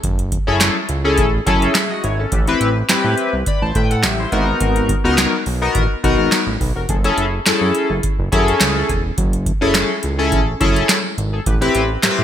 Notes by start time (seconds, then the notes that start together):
0.04 F#1, kick, closed hi-hat
0.19 closed hi-hat
0.32 kick, closed hi-hat
0.47 F#1 C#4 E4 G#4 A4
0.60 snare, clap, closed hi-hat
0.89 C#2, closed hi-hat
1.04 C#4 E4 G#4 A4
1.18 A1, kick, closed hi-hat
1.46 F#1 C#4 E4 G#4 A4, kick, closed hi-hat
1.62 closed hi-hat
1.75 G#4 E5, snare, clap, closed hi-hat
1.91 F#4 D#5
2.04 G#1 E4 C#5, closed hi-hat
2.19 C#4 A4
2.32 A1 G4 B4, kick, closed hi-hat
2.47 C4 E4 G4 B4, closed hi-hat
2.61 A1, closed hi-hat
2.89 A2 C4 E4 G4 B4, snare, clap, closed hi-hat
3.04 A2
3.18 closed hi-hat
3.33 C2
3.46 D5 B5, kick, closed hi-hat
3.62 A1 C5 A5
3.75 A2 B4 G5, kick, closed hi-hat
3.91 A4 F#5, closed hi-hat
4.03 A1 G4 E5, snare, clap, closed hi-hat
4.20 E4 C5
4.32 G#1 B3 D#4 F#4 A#4, kick, closed hi-hat
4.60 G#1, kick, closed hi-hat
4.76 closed hi-hat
4.89 kick, closed hi-hat
5.04 C#2 B3 D#4 F#4 A#4
5.18 snare, clap, closed hi-hat
5.46 B1, open hi-hat
5.62 B3 D#4 F#4 A#4
5.75 A1, kick, closed hi-hat
6.04 B1 B3 D#4 F#4 A#4, kick, closed hi-hat
6.18 G#1
6.32 snare, clap, closed hi-hat
6.47 A1
6.61 B1, kick, open hi-hat
6.75 F1 F#4 A#4
6.89 F#1 G#4 A4, kick, closed hi-hat
7.04 C#4 E4 G#4 A4, closed hi-hat
7.17 F#1, closed hi-hat
7.46 F#2 C#4 E4 G#4 A4, snare, clap, closed hi-hat
7.61 F#2
7.75 closed hi-hat
7.90 F#1
8.03 kick, closed hi-hat
8.19 F#1
8.32 F#2 C#4 E4 G#4 A4, kick, closed hi-hat
8.48 closed hi-hat
8.61 C#2, snare, clap, closed hi-hat
8.89 E1, kick, closed hi-hat
9.18 F#1, kick, closed hi-hat
9.33 closed hi-hat
9.46 kick, closed hi-hat
9.61 F#1 C#4 E4 G#4 A4
9.74 snare, clap, closed hi-hat
10.03 C#2, closed hi-hat
10.18 C#4 E4 G#4 A4
10.32 A1, kick, closed hi-hat
10.60 F#1 C#4 E4 G#4 A4, kick, closed hi-hat
10.76 closed hi-hat
10.89 snare, clap, closed hi-hat
11.18 G#1, closed hi-hat
11.33 G#4 A4
11.46 A1 G4 B4, kick, closed hi-hat
11.61 C4 E4 G4 B4, closed hi-hat
11.75 A1, closed hi-hat
12.03 A2 C4 E4 G4 A#4, snare, clap, closed hi-hat
12.11 B4
12.19 A2